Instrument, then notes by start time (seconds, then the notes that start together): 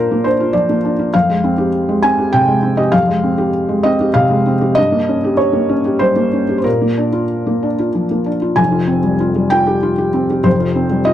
felt piano
Already playing: A#2 A#3 D4 F4 A#4 C5
0.11 A#3
0.24 D4 C5
0.40 F4
0.53 F3 D5
0.69 A#3
0.85 D4
0.99 F4
1.14 F2 F5
1.29 G#3
1.44 C4
1.58 G4
1.89 G#3
2.02 C4 G#5
2.18 G4
2.33 C3 G5
2.47 G#3
2.63 C4
2.77 G4 D#5
2.92 F2 F5
3.08 G#3
3.24 C4
3.38 G4
3.69 G#3
3.83 C4 D#5
4.01 G4
4.14 C3 F5
4.30 G#3
4.46 C4
4.61 G4
4.75 G2 D#5
4.92 A#3
5.09 C#4
5.24 G4
5.37 C#5
5.53 A#3
5.69 C#4
5.85 G4
5.99 G3 C5
6.16 A#3
6.33 C#4
6.49 G4
6.58 C5
6.64 A#2 A#4
6.82 A#3
6.97 D4
7.13 F4
7.47 A#3
7.63 D4
7.79 F4
7.95 F3
8.11 A#3
8.26 D4
8.42 F4
8.56 F1 F2 G#5
8.72 F4
8.87 C4
9.03 G3
9.20 F4
9.35 G3
9.50 F4 G5
9.67 G4
9.83 F4
9.98 G4
10.13 C4
10.30 G4
10.44 F1 F2 C5
10.60 F4
10.75 C4
10.91 G3
11.05 F4 D#5